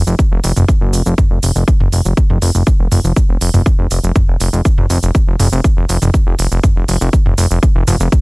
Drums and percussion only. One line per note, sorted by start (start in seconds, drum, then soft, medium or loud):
0.07 shaker medium
0.19 kick loud
0.19 shaker soft
0.44 open hi-hat loud
0.44 shaker medium
0.56 mid tom medium
0.56 shaker soft
0.68 kick loud
0.68 shaker medium
0.93 open hi-hat medium
0.93 shaker medium
1.06 shaker soft
1.18 kick loud
1.18 mid tom medium
1.18 shaker soft
1.43 open hi-hat loud
1.43 shaker medium
1.56 shaker soft
1.68 kick loud
1.68 shaker soft
1.80 mid tom medium
1.92 open hi-hat medium
1.92 shaker medium
2.05 shaker soft
2.17 kick loud
2.17 shaker medium
2.30 mid tom medium
2.42 open hi-hat loud
2.42 shaker medium
2.55 shaker soft
2.67 kick loud
2.67 shaker medium
2.92 mid tom medium
2.92 open hi-hat medium
2.92 shaker medium
3.04 shaker soft
3.16 kick loud
3.16 shaker medium
3.41 open hi-hat loud
3.41 shaker medium
3.54 mid tom medium
3.54 shaker soft
3.66 kick loud
3.66 shaker soft
3.91 open hi-hat medium
3.91 shaker medium
4.04 shaker soft
4.16 kick loud
4.16 mid tom medium
4.16 shaker medium
4.40 open hi-hat medium
4.40 shaker medium
4.53 shaker soft
4.65 kick loud
4.65 shaker medium
4.78 mid tom medium
4.90 open hi-hat medium
4.90 shaker medium
5.03 shaker medium
5.15 kick loud
5.15 shaker medium
5.40 mid tom loud
5.40 open hi-hat loud
5.40 shaker medium
5.52 shaker medium
5.64 kick loud
5.64 shaker medium
5.89 open hi-hat medium
5.89 shaker medium
6.02 mid tom medium
6.02 shaker medium
6.14 kick loud
6.14 shaker medium
6.39 open hi-hat loud
6.39 shaker medium
6.51 shaker medium
6.64 kick loud
6.64 mid tom medium
6.64 shaker medium
6.88 open hi-hat medium
6.88 shaker medium
7.01 shaker medium
7.13 kick loud
7.13 shaker medium
7.26 mid tom medium
7.38 open hi-hat loud
7.38 shaker medium
7.51 shaker medium
7.63 kick loud
7.63 shaker medium
7.87 mid tom medium
7.87 open hi-hat medium
7.87 shaker medium
8.00 shaker medium
8.12 kick loud
8.12 shaker medium